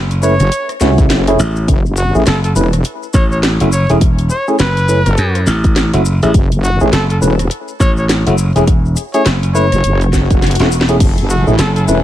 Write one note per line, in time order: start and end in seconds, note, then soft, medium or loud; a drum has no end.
0.00 0.38 F#1 medium
0.11 closed hi-hat soft
0.11 maracas soft
0.23 0.33 A3 medium
0.23 0.33 C#4 medium
0.23 0.33 E4 medium
0.23 0.33 B4 medium
0.23 0.69 C#5 medium
0.23 maracas loud
0.40 0.50 F#1 loud
0.40 cross-stick soft
0.40 closed hi-hat soft
0.40 maracas soft
0.52 closed hi-hat medium
0.52 maracas medium
0.69 cross-stick soft
0.69 closed hi-hat soft
0.69 maracas soft
0.81 1.08 C#2 loud
0.81 1.24 A3 medium
0.81 1.24 C#4 medium
0.81 1.24 E4 medium
0.81 1.24 F#4 medium
0.81 snare medium
0.81 maracas loud
0.98 kick loud
0.98 closed hi-hat soft
0.98 maracas soft
1.10 1.37 F#1 loud
1.10 snare loud
1.10 closed hi-hat medium
1.10 maracas medium
1.27 1.39 A3 loud
1.27 1.39 C#4 medium
1.27 1.39 E4 medium
1.27 1.39 G#4 loud
1.27 cross-stick soft
1.27 closed hi-hat medium
1.27 maracas soft
1.39 1.67 A1 loud
1.39 maracas medium
1.56 maracas soft
1.68 2.12 F#1 medium
1.68 kick loud
1.68 closed hi-hat medium
1.68 maracas medium
1.86 maracas soft
1.97 2.15 F#4 medium
1.97 maracas loud
2.15 2.25 A1 loud
2.15 2.22 A3 medium
2.15 2.22 C#4 medium
2.15 2.22 E4 medium
2.15 2.22 G#4 loud
2.15 maracas soft
2.26 2.54 F#1 medium
2.26 2.38 A4 medium
2.26 snare loud
2.26 closed hi-hat medium
2.26 maracas medium
2.44 2.52 A4 medium
2.44 closed hi-hat soft
2.44 maracas soft
2.56 2.83 E1 loud
2.56 2.66 A3 medium
2.56 2.66 C#4 medium
2.56 2.66 E4 medium
2.56 2.66 B4 medium
2.56 maracas loud
2.73 cross-stick soft
2.73 closed hi-hat medium
2.73 maracas soft
2.84 closed hi-hat medium
2.84 maracas soft
3.03 maracas soft
3.14 3.58 A1 loud
3.14 3.25 C#5 medium
3.14 kick loud
3.14 cross-stick soft
3.14 maracas loud
3.31 3.39 C#5 medium
3.31 maracas soft
3.43 cross-stick soft
3.43 snare loud
3.43 closed hi-hat medium
3.43 maracas medium
3.60 3.87 F#1 loud
3.60 3.68 A3 medium
3.60 3.68 C#4 medium
3.60 3.68 E4 medium
3.60 3.68 F#4 medium
3.60 closed hi-hat medium
3.60 maracas soft
3.72 3.90 C#5 medium
3.72 maracas loud
3.89 4.29 E1 loud
3.89 3.97 A3 medium
3.89 3.97 C#4 medium
3.89 3.97 E4 medium
3.89 3.97 G#4 loud
3.89 closed hi-hat soft
3.89 maracas soft
4.01 kick loud
4.01 closed hi-hat medium
4.01 maracas medium
4.19 closed hi-hat soft
4.19 maracas soft
4.30 4.48 C#5 medium
4.30 maracas medium
4.48 4.55 A3 medium
4.48 4.55 C#4 medium
4.48 4.55 E4 medium
4.48 4.55 G#4 loud
4.48 maracas soft
4.59 5.03 F#1 loud
4.59 5.43 B4 loud
4.59 snare loud
4.59 closed hi-hat medium
4.59 maracas medium
4.77 closed hi-hat soft
4.77 maracas soft
4.89 4.99 A3 medium
4.89 4.99 C#4 medium
4.89 4.99 E4 medium
4.89 4.99 B4 medium
4.89 maracas medium
5.06 5.16 F#1 medium
5.06 cross-stick medium
5.06 closed hi-hat soft
5.06 maracas soft
5.17 5.45 F#2 loud
5.17 closed hi-hat medium
5.17 maracas soft
5.35 cross-stick medium
5.35 closed hi-hat soft
5.35 maracas soft
5.47 5.91 A1 medium
5.47 snare medium
5.47 maracas medium
5.64 kick loud
5.64 closed hi-hat soft
5.64 maracas soft
5.76 snare loud
5.76 closed hi-hat medium
5.76 maracas soft
5.94 6.20 F#1 medium
5.94 6.01 A3 medium
5.94 6.01 C#4 medium
5.94 6.01 E4 medium
5.94 6.01 F#4 medium
5.94 cross-stick soft
5.94 closed hi-hat medium
5.94 maracas soft
6.05 maracas medium
6.22 6.33 A1 loud
6.22 6.30 A3 medium
6.22 6.30 C#4 medium
6.22 6.30 E4 medium
6.22 6.30 G#4 medium
6.22 closed hi-hat soft
6.22 maracas soft
6.34 6.78 F#1 loud
6.34 kick loud
6.34 closed hi-hat medium
6.34 maracas soft
6.52 closed hi-hat soft
6.52 maracas soft
6.64 6.81 F#4 medium
6.64 maracas medium
6.80 6.91 A1 loud
6.80 6.88 A3 medium
6.80 6.88 C#4 medium
6.80 6.88 E4 medium
6.80 6.88 G#4 loud
6.80 maracas soft
6.92 7.20 F#1 loud
6.92 7.04 A4 medium
6.92 snare loud
6.92 closed hi-hat medium
6.92 maracas medium
7.10 7.18 A4 medium
7.10 closed hi-hat soft
7.10 maracas soft
7.22 7.49 E1 medium
7.22 7.32 A3 medium
7.22 7.32 C#4 medium
7.22 7.32 E4 medium
7.22 7.32 B4 medium
7.22 maracas medium
7.39 cross-stick medium
7.39 closed hi-hat soft
7.39 maracas soft
7.51 closed hi-hat medium
7.51 maracas medium
7.68 maracas soft
7.80 8.24 A1 loud
7.80 7.91 C#5 medium
7.80 kick loud
7.80 cross-stick soft
7.80 maracas medium
7.97 8.05 C#5 medium
7.97 maracas soft
8.09 cross-stick soft
8.09 snare loud
8.09 closed hi-hat medium
8.09 maracas medium
8.27 8.53 F#1 medium
8.27 8.34 A3 medium
8.27 8.34 C#4 medium
8.27 8.34 E4 medium
8.27 8.34 F#4 medium
8.27 closed hi-hat medium
8.27 maracas soft
8.38 maracas medium
8.56 8.95 E1 medium
8.56 8.63 A3 medium
8.56 8.63 C#4 medium
8.56 8.63 E4 medium
8.56 8.63 G#4 loud
8.56 closed hi-hat soft
8.56 maracas soft
8.67 kick loud
8.67 closed hi-hat medium
8.67 maracas soft
8.85 maracas soft
8.96 closed hi-hat soft
8.96 maracas loud
9.14 9.21 A3 medium
9.14 9.21 C#4 medium
9.14 9.21 E4 medium
9.14 9.21 G#4 loud
9.14 9.26 C#5 medium
9.14 closed hi-hat soft
9.14 maracas soft
9.26 9.70 F#1 medium
9.26 snare loud
9.26 closed hi-hat medium
9.26 maracas medium
9.43 closed hi-hat soft
9.43 maracas soft
9.55 9.65 A3 medium
9.55 9.65 C#4 medium
9.55 9.65 E4 medium
9.55 9.65 B4 medium
9.55 10.02 C#5 medium
9.55 maracas medium
9.72 9.82 F#1 loud
9.72 cross-stick medium
9.72 closed hi-hat medium
9.72 maracas soft
9.84 10.28 F#1 loud
9.84 closed hi-hat medium
9.84 swell medium
9.84 maracas soft
10.01 closed hi-hat soft
10.01 maracas soft
10.13 kick medium
10.13 snare medium
10.13 maracas medium
10.30 10.57 F#1 loud
10.30 kick loud
10.30 closed hi-hat soft
10.30 maracas soft
10.42 snare medium
10.42 closed hi-hat soft
10.42 maracas soft
10.47 closed hi-hat soft
10.51 closed hi-hat medium
10.55 closed hi-hat medium
10.60 10.99 E1 medium
10.60 10.67 A3 medium
10.60 10.67 C#4 medium
10.60 10.67 E4 medium
10.60 10.67 F#4 medium
10.60 snare medium
10.60 closed hi-hat medium
10.60 maracas soft
10.72 maracas medium
10.81 snare loud
10.88 10.96 A3 medium
10.88 10.96 C#4 medium
10.88 10.96 E4 medium
10.88 10.96 G#4 loud
10.88 closed hi-hat soft
10.88 maracas soft
11.00 11.44 F#1 loud
11.00 12.04 F#3 medium
11.00 12.04 E4 medium
11.00 12.04 G#4 medium
11.00 12.04 A4 medium
11.00 kick loud
11.00 closed hi-hat medium
11.00 crash medium
11.00 maracas medium
11.18 closed hi-hat soft
11.18 maracas soft
11.30 11.47 F#4 medium
11.30 maracas medium
11.47 11.57 A1 loud
11.47 11.54 A3 medium
11.47 11.54 C#4 medium
11.47 11.54 E4 medium
11.47 11.54 G#4 loud
11.47 maracas soft
11.59 11.86 F#1 loud
11.59 11.70 A4 medium
11.59 snare loud
11.59 closed hi-hat medium
11.59 maracas medium
11.76 11.84 A4 medium
11.76 closed hi-hat soft
11.76 maracas soft
11.88 12.04 E1 loud
11.88 11.98 A3 medium
11.88 11.98 C#4 medium
11.88 11.98 E4 medium
11.88 11.98 B4 medium
11.88 maracas loud